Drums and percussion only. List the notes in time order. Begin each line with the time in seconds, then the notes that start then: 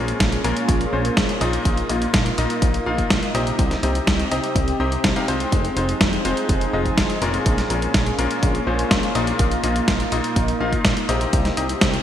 0.08 closed hi-hat
0.20 kick, snare, closed hi-hat
0.32 closed hi-hat
0.44 closed hi-hat
0.57 closed hi-hat
0.69 kick, closed hi-hat
0.81 closed hi-hat
1.05 closed hi-hat
1.17 kick, snare, closed hi-hat
1.29 closed hi-hat
1.41 closed hi-hat
1.53 closed hi-hat
1.65 kick, closed hi-hat
1.77 closed hi-hat
1.90 closed hi-hat
2.02 closed hi-hat
2.14 kick, snare, closed hi-hat
2.26 closed hi-hat
2.38 closed hi-hat
2.50 closed hi-hat
2.62 kick, closed hi-hat
2.74 closed hi-hat
2.98 kick, closed hi-hat
3.10 kick, snare, closed hi-hat
3.23 closed hi-hat
3.35 closed hi-hat
3.47 closed hi-hat
3.59 kick, closed hi-hat
3.71 snare, closed hi-hat
3.83 closed hi-hat
3.95 closed hi-hat
4.07 kick, snare, closed hi-hat
4.19 closed hi-hat
4.31 closed hi-hat
4.44 closed hi-hat
4.56 kick, closed hi-hat
4.68 closed hi-hat
4.92 closed hi-hat
5.04 kick, snare, closed hi-hat
5.16 closed hi-hat
5.28 closed hi-hat
5.40 closed hi-hat
5.52 kick, closed hi-hat
5.65 closed hi-hat
5.77 closed hi-hat
5.89 closed hi-hat
6.01 kick, snare, closed hi-hat
6.13 closed hi-hat
6.25 closed hi-hat
6.37 closed hi-hat
6.49 kick, closed hi-hat
6.61 closed hi-hat
6.85 kick, closed hi-hat
6.98 kick, snare, closed hi-hat
7.10 closed hi-hat
7.22 closed hi-hat
7.34 closed hi-hat
7.46 kick, closed hi-hat
7.58 snare, closed hi-hat
7.70 closed hi-hat
7.82 closed hi-hat
7.94 kick, snare, closed hi-hat
8.06 closed hi-hat
8.19 closed hi-hat
8.31 closed hi-hat
8.43 kick, closed hi-hat
8.55 closed hi-hat
8.79 closed hi-hat
8.91 kick, snare, closed hi-hat
9.03 closed hi-hat
9.15 closed hi-hat
9.27 closed hi-hat
9.39 kick, closed hi-hat
9.51 closed hi-hat
9.64 closed hi-hat
9.76 closed hi-hat
9.88 kick, snare, closed hi-hat
10.00 closed hi-hat
10.12 closed hi-hat
10.24 closed hi-hat
10.36 kick, closed hi-hat
10.48 closed hi-hat
10.73 kick, closed hi-hat
10.85 kick, snare, closed hi-hat
10.97 closed hi-hat
11.09 closed hi-hat
11.21 closed hi-hat
11.33 kick, closed hi-hat
11.45 snare, closed hi-hat
11.57 closed hi-hat
11.69 closed hi-hat
11.81 kick, snare, closed hi-hat
11.94 closed hi-hat